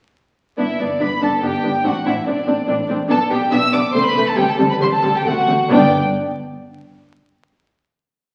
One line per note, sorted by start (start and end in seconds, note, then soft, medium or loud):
0.58 0.67 G1 soft
0.58 0.66 G2 soft
0.58 0.66 B3 soft
0.58 0.66 D4 soft
0.58 0.79 E4 soft
0.58 0.78 E5 medium
0.79 0.87 G1 soft
0.79 0.87 G2 soft
0.79 0.88 B3 soft
0.79 0.87 D4 soft
0.79 0.88 D4 soft
0.79 1.01 D5 soft
1.00 1.10 G1 soft
1.00 1.09 G2 soft
1.00 1.08 B3 soft
1.00 1.08 D4 soft
1.00 1.09 B4 soft
1.00 1.22 B5 medium
1.21 1.30 G1 soft
1.21 1.29 G2 soft
1.21 1.29 B3 soft
1.21 1.30 D4 soft
1.21 1.43 A4 soft
1.21 1.30 A5 soft
1.42 1.51 G1 soft
1.42 1.50 G2 soft
1.42 1.50 B3 soft
1.42 1.50 D4 soft
1.42 1.86 G4 medium
1.42 1.85 G5 medium
1.63 1.72 G1 soft
1.63 1.72 G2 soft
1.63 1.71 B3 soft
1.63 1.71 D4 soft
1.84 1.94 A1 soft
1.84 1.93 A2 soft
1.84 1.92 C4 soft
1.84 1.92 D4 soft
1.84 1.93 F#4 medium
1.84 2.06 F#5 medium
2.06 2.15 A1 soft
2.06 2.14 A2 soft
2.06 2.14 C4 soft
2.06 2.14 D4 soft
2.06 2.15 E4 soft
2.06 2.27 E5 medium
2.27 2.35 A1 soft
2.27 2.35 A2 medium
2.27 2.35 C4 soft
2.27 2.35 D4 soft
2.27 2.88 D4 soft
2.27 2.88 D5 medium
2.47 2.56 A1 medium
2.47 2.56 A2 soft
2.47 2.55 C4 soft
2.47 2.55 D4 soft
2.68 2.77 A1 medium
2.68 2.77 A2 medium
2.68 2.76 C4 soft
2.68 2.76 D4 soft
2.89 2.98 A1 soft
2.89 2.98 A2 medium
2.89 2.97 C4 soft
2.89 2.97 D4 soft
3.09 3.19 B1 medium
3.09 3.18 B2 medium
3.09 3.17 B3 medium
3.09 3.17 D4 soft
3.09 3.29 A4 medium
3.09 3.18 A5 medium
3.30 3.40 B1 medium
3.30 3.39 B2 medium
3.30 3.38 B3 soft
3.30 3.38 D4 medium
3.30 3.39 G4 medium
3.30 3.52 G5 medium
3.52 3.60 B1 medium
3.52 3.60 B2 medium
3.52 3.60 B3 medium
3.52 3.60 D4 medium
3.52 3.60 E5 medium
3.52 3.73 E6 loud
3.72 3.81 B1 medium
3.72 3.81 B2 medium
3.72 3.81 B3 medium
3.72 3.81 D4 medium
3.72 3.80 D5 medium
3.72 3.95 D6 medium
3.94 4.03 C2 medium
3.94 4.02 C3 medium
3.94 4.02 A3 medium
3.94 4.02 C4 medium
3.94 4.05 C5 medium
3.94 4.05 C6 medium
4.04 4.26 B4 medium
4.04 4.27 B5 medium
4.16 4.24 C2 medium
4.16 4.24 C3 medium
4.16 4.25 A3 medium
4.16 4.24 C4 medium
4.26 4.37 A4 medium
4.26 4.38 A5 medium
4.37 4.45 D2 medium
4.37 4.45 D3 medium
4.37 4.45 G3 medium
4.37 4.45 C4 medium
4.37 4.48 G4 medium
4.37 4.48 G5 medium
4.49 4.57 A4 medium
4.49 4.70 A5 medium
4.58 4.66 D2 medium
4.58 4.67 D3 medium
4.58 4.66 G3 medium
4.58 4.66 C4 medium
4.71 4.75 B4 medium
4.71 4.75 B5 medium
4.80 4.88 D2 medium
4.80 4.89 D3 medium
4.80 4.89 G3 medium
4.80 4.89 C4 medium
4.80 4.86 C5 medium
4.80 4.86 C6 medium
4.92 5.14 A4 medium
4.92 5.15 A5 medium
5.02 5.10 D2 medium
5.02 5.11 D3 medium
5.02 5.11 G3 medium
5.02 5.11 C4 medium
5.16 5.26 G4 medium
5.16 5.27 G5 medium
5.25 5.33 D2 medium
5.25 5.34 D3 medium
5.25 5.34 A3 soft
5.25 5.34 C4 soft
5.25 5.71 F#4 medium
5.25 5.72 F#5 medium
5.48 5.56 D2 soft
5.48 5.56 D3 medium
5.48 5.56 A3 soft
5.48 5.56 C4 soft
5.71 5.97 G1 medium
5.71 5.97 G2 medium
5.71 5.96 B3 medium
5.71 5.96 D4 medium
5.71 5.97 D5 medium
5.71 5.97 G5 medium